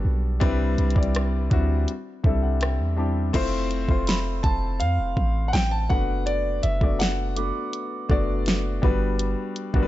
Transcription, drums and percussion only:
0.41 kick loud
0.41 closed hi-hat medium
0.78 closed hi-hat soft
0.90 closed hi-hat soft
0.96 kick medium
1.03 closed hi-hat medium
1.15 cross-stick loud
1.15 closed hi-hat medium
1.51 kick medium
1.51 closed hi-hat medium
1.88 closed hi-hat medium
2.24 kick medium
2.61 cross-stick loud
2.61 closed hi-hat medium
3.34 kick loud
3.34 closed hi-hat medium
3.34 crash medium
3.71 closed hi-hat medium
3.89 kick medium
4.07 snare loud
4.07 closed hi-hat medium
4.44 kick medium
4.44 closed hi-hat medium
4.80 closed hi-hat medium
5.17 kick loud
5.53 snare loud
5.53 closed hi-hat medium
5.90 kick loud
6.27 closed hi-hat medium
6.63 closed hi-hat medium
6.81 kick medium
7.00 snare loud
7.00 closed hi-hat medium
7.37 closed hi-hat medium
7.73 closed hi-hat medium
8.10 kick loud
8.46 snare loud
8.46 closed hi-hat medium
8.83 kick loud
9.19 closed hi-hat medium
9.56 closed hi-hat medium
9.74 kick medium

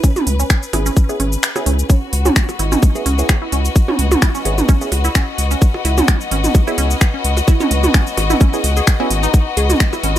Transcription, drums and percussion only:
0.04 kick loud
0.04 shaker medium
0.16 mid tom loud
0.16 shaker soft
0.27 open hi-hat medium
0.40 shaker soft
0.50 finger snap loud
0.50 kick loud
0.50 shaker medium
0.63 shaker soft
0.73 open hi-hat medium
0.73 percussion blips soft
0.86 shaker soft
0.97 kick loud
0.97 shaker medium
1.09 shaker soft
1.20 open hi-hat medium
1.33 shaker soft
1.43 finger snap medium
1.43 shaker medium
1.56 percussion blips soft
1.56 shaker soft
1.66 open hi-hat medium
1.79 shaker soft
1.90 kick loud
1.90 shaker medium
2.13 open hi-hat medium
2.26 mid tom loud
2.26 shaker soft
2.36 finger snap loud
2.36 kick loud
2.36 shaker medium
2.49 percussion blips soft
2.49 shaker soft
2.59 open hi-hat medium
2.72 mid tom medium
2.72 shaker soft
2.83 kick loud
2.83 shaker medium
2.95 shaker soft
3.06 open hi-hat medium
3.19 shaker soft
3.29 finger snap loud
3.29 kick loud
3.29 percussion blips soft
3.29 shaker medium
3.52 open hi-hat medium
3.65 shaker soft
3.76 kick loud
3.76 shaker medium
3.88 mid tom medium
3.99 open hi-hat loud
4.12 mid tom loud
4.12 percussion blips soft
4.12 shaker soft
4.22 finger snap loud
4.22 kick loud
4.22 shaker medium
4.35 shaker soft
4.45 open hi-hat loud
4.58 mid tom medium
4.58 shaker soft
4.69 kick loud
4.69 shaker medium
4.81 shaker soft
4.92 open hi-hat medium
4.92 percussion blips soft
5.05 shaker soft
5.15 finger snap loud
5.15 kick loud
5.15 shaker medium
5.38 open hi-hat loud
5.51 shaker soft
5.62 kick loud
5.62 shaker medium
5.74 percussion blips soft
5.85 open hi-hat loud
5.98 mid tom loud
5.98 shaker soft
6.08 finger snap medium
6.08 kick loud
6.08 shaker medium
6.21 shaker soft
6.31 open hi-hat medium
6.44 mid tom medium
6.44 shaker soft
6.55 kick loud
6.55 percussion blips soft
6.55 shaker medium
6.67 shaker soft
6.78 open hi-hat medium
6.91 shaker soft
7.01 finger snap medium
7.01 kick loud
7.01 shaker medium
7.24 open hi-hat loud
7.37 percussion blips soft
7.37 shaker soft
7.48 kick loud
7.48 shaker medium
7.60 mid tom medium
7.60 shaker soft
7.71 open hi-hat loud
7.84 mid tom medium
7.84 shaker soft
7.94 finger snap medium
7.94 kick loud
7.94 shaker soft
8.07 shaker soft
8.17 open hi-hat medium
8.17 percussion blips soft
8.30 mid tom medium
8.30 shaker soft
8.41 kick loud
8.41 shaker soft
8.53 shaker soft
8.64 open hi-hat loud
8.77 shaker soft
8.87 finger snap medium
8.87 kick loud
8.87 shaker medium
9.00 percussion blips soft
9.11 open hi-hat loud
9.23 shaker soft
9.34 kick loud
9.34 shaker medium
9.57 open hi-hat medium
9.70 mid tom medium
9.70 shaker soft
9.80 finger snap medium
9.80 kick loud
9.80 shaker medium
9.93 percussion blips soft
9.93 shaker soft
10.03 open hi-hat medium

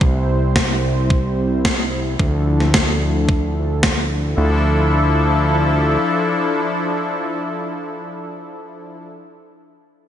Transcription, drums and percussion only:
0.01 kick loud
0.56 kick loud
0.56 snare loud
1.10 kick loud
1.65 kick loud
1.65 snare loud
2.19 kick loud
2.60 snare soft
2.74 kick loud
2.74 snare loud
3.29 kick loud
3.83 kick loud
3.83 snare loud

